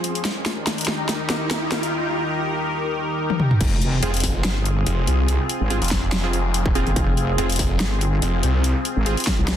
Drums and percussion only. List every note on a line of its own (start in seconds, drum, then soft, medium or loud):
0.04 closed hi-hat medium
0.15 closed hi-hat soft
0.25 snare medium
0.25 closed hi-hat medium
0.46 snare medium
0.46 closed hi-hat medium
0.67 snare medium
0.67 closed hi-hat medium
0.78 closed hi-hat soft
0.81 closed hi-hat medium
0.85 snare medium
0.85 closed hi-hat medium
1.09 snare medium
1.09 closed hi-hat medium
1.30 snare medium
1.30 closed hi-hat medium
1.51 snare medium
1.51 closed hi-hat medium
1.72 snare medium
1.72 closed hi-hat medium
1.83 closed hi-hat soft
3.30 high tom medium
3.40 mid tom medium
3.51 mid tom medium
3.61 kick loud
3.61 closed hi-hat medium
3.61 crash loud
3.82 closed hi-hat medium
4.03 closed hi-hat medium
4.14 closed hi-hat medium
4.17 closed hi-hat medium
4.20 kick medium
4.20 closed hi-hat medium
4.20 open hi-hat loud
4.45 snare loud
4.45 closed hi-hat medium
4.66 closed hi-hat medium
4.86 closed hi-hat medium
5.07 closed hi-hat medium
5.28 closed hi-hat medium
5.49 closed hi-hat medium
5.70 closed hi-hat medium
5.82 closed hi-hat medium
5.84 closed hi-hat medium
5.88 kick medium
5.88 snare medium
5.88 closed hi-hat medium
5.88 open hi-hat medium
6.12 snare loud
6.12 closed hi-hat medium
6.33 closed hi-hat medium
6.54 closed hi-hat medium
6.66 kick loud
6.75 closed hi-hat medium
6.87 closed hi-hat soft
6.96 kick loud
6.96 closed hi-hat medium
7.17 closed hi-hat medium
7.38 closed hi-hat medium
7.50 closed hi-hat soft
7.52 closed hi-hat medium
7.56 kick medium
7.56 closed hi-hat medium
7.56 open hi-hat medium
7.80 snare loud
7.80 closed hi-hat medium
8.01 closed hi-hat medium
8.22 closed hi-hat medium
8.43 closed hi-hat medium
8.64 closed hi-hat medium
8.85 closed hi-hat medium
9.06 closed hi-hat medium
9.17 closed hi-hat soft
9.20 closed hi-hat medium
9.24 kick medium
9.24 snare medium
9.24 closed hi-hat medium
9.24 open hi-hat medium
9.48 snare loud
9.48 closed hi-hat medium